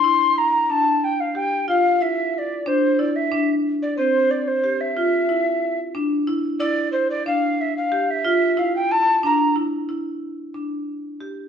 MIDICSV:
0, 0, Header, 1, 3, 480
1, 0, Start_track
1, 0, Tempo, 657174
1, 30, Time_signature, 5, 3, 24, 8
1, 8389, End_track
2, 0, Start_track
2, 0, Title_t, "Recorder"
2, 0, Program_c, 0, 74
2, 0, Note_on_c, 0, 84, 113
2, 278, Note_on_c, 0, 82, 94
2, 289, Note_off_c, 0, 84, 0
2, 517, Note_on_c, 0, 81, 100
2, 528, Note_off_c, 0, 82, 0
2, 760, Note_on_c, 0, 79, 90
2, 771, Note_off_c, 0, 81, 0
2, 879, Note_on_c, 0, 77, 89
2, 890, Note_off_c, 0, 79, 0
2, 998, Note_on_c, 0, 79, 102
2, 1009, Note_off_c, 0, 77, 0
2, 1229, Note_off_c, 0, 79, 0
2, 1233, Note_on_c, 0, 77, 85
2, 1475, Note_on_c, 0, 76, 80
2, 1486, Note_off_c, 0, 77, 0
2, 1707, Note_off_c, 0, 76, 0
2, 1707, Note_on_c, 0, 76, 85
2, 1741, Note_on_c, 0, 74, 93
2, 1749, Note_off_c, 0, 76, 0
2, 1953, Note_on_c, 0, 72, 79
2, 1964, Note_off_c, 0, 74, 0
2, 2185, Note_on_c, 0, 74, 89
2, 2196, Note_off_c, 0, 72, 0
2, 2308, Note_on_c, 0, 76, 78
2, 2319, Note_off_c, 0, 74, 0
2, 2591, Note_off_c, 0, 76, 0
2, 2793, Note_on_c, 0, 74, 82
2, 2899, Note_off_c, 0, 74, 0
2, 2903, Note_on_c, 0, 72, 84
2, 3146, Note_on_c, 0, 74, 76
2, 3157, Note_off_c, 0, 72, 0
2, 3269, Note_on_c, 0, 72, 73
2, 3280, Note_off_c, 0, 74, 0
2, 3511, Note_on_c, 0, 76, 76
2, 3522, Note_off_c, 0, 72, 0
2, 4228, Note_off_c, 0, 76, 0
2, 4818, Note_on_c, 0, 74, 96
2, 5044, Note_off_c, 0, 74, 0
2, 5058, Note_on_c, 0, 72, 74
2, 5172, Note_off_c, 0, 72, 0
2, 5187, Note_on_c, 0, 74, 86
2, 5297, Note_off_c, 0, 74, 0
2, 5309, Note_on_c, 0, 77, 91
2, 5559, Note_on_c, 0, 76, 86
2, 5570, Note_off_c, 0, 77, 0
2, 5672, Note_off_c, 0, 76, 0
2, 5675, Note_on_c, 0, 77, 79
2, 5920, Note_on_c, 0, 76, 87
2, 5931, Note_off_c, 0, 77, 0
2, 6273, Note_on_c, 0, 77, 89
2, 6284, Note_off_c, 0, 76, 0
2, 6389, Note_off_c, 0, 77, 0
2, 6398, Note_on_c, 0, 79, 102
2, 6512, Note_on_c, 0, 81, 114
2, 6523, Note_off_c, 0, 79, 0
2, 6748, Note_off_c, 0, 81, 0
2, 6759, Note_on_c, 0, 82, 97
2, 6975, Note_off_c, 0, 82, 0
2, 8389, End_track
3, 0, Start_track
3, 0, Title_t, "Marimba"
3, 0, Program_c, 1, 12
3, 30, Note_on_c, 1, 64, 84
3, 436, Note_off_c, 1, 64, 0
3, 509, Note_on_c, 1, 62, 67
3, 915, Note_off_c, 1, 62, 0
3, 986, Note_on_c, 1, 67, 69
3, 1190, Note_off_c, 1, 67, 0
3, 1226, Note_on_c, 1, 65, 79
3, 1430, Note_off_c, 1, 65, 0
3, 1466, Note_on_c, 1, 64, 67
3, 1873, Note_off_c, 1, 64, 0
3, 1944, Note_on_c, 1, 62, 86
3, 2148, Note_off_c, 1, 62, 0
3, 2185, Note_on_c, 1, 64, 73
3, 2389, Note_off_c, 1, 64, 0
3, 2423, Note_on_c, 1, 62, 90
3, 2830, Note_off_c, 1, 62, 0
3, 2904, Note_on_c, 1, 60, 64
3, 3311, Note_off_c, 1, 60, 0
3, 3387, Note_on_c, 1, 67, 68
3, 3589, Note_off_c, 1, 67, 0
3, 3627, Note_on_c, 1, 65, 82
3, 3829, Note_off_c, 1, 65, 0
3, 3864, Note_on_c, 1, 64, 73
3, 4270, Note_off_c, 1, 64, 0
3, 4344, Note_on_c, 1, 62, 84
3, 4547, Note_off_c, 1, 62, 0
3, 4582, Note_on_c, 1, 64, 79
3, 4786, Note_off_c, 1, 64, 0
3, 4823, Note_on_c, 1, 64, 85
3, 5230, Note_off_c, 1, 64, 0
3, 5303, Note_on_c, 1, 62, 71
3, 5709, Note_off_c, 1, 62, 0
3, 5783, Note_on_c, 1, 67, 79
3, 5987, Note_off_c, 1, 67, 0
3, 6022, Note_on_c, 1, 65, 90
3, 6226, Note_off_c, 1, 65, 0
3, 6261, Note_on_c, 1, 64, 77
3, 6668, Note_off_c, 1, 64, 0
3, 6743, Note_on_c, 1, 62, 84
3, 6947, Note_off_c, 1, 62, 0
3, 6981, Note_on_c, 1, 64, 75
3, 7186, Note_off_c, 1, 64, 0
3, 7223, Note_on_c, 1, 64, 62
3, 7630, Note_off_c, 1, 64, 0
3, 7702, Note_on_c, 1, 62, 52
3, 8110, Note_off_c, 1, 62, 0
3, 8184, Note_on_c, 1, 67, 58
3, 8388, Note_off_c, 1, 67, 0
3, 8389, End_track
0, 0, End_of_file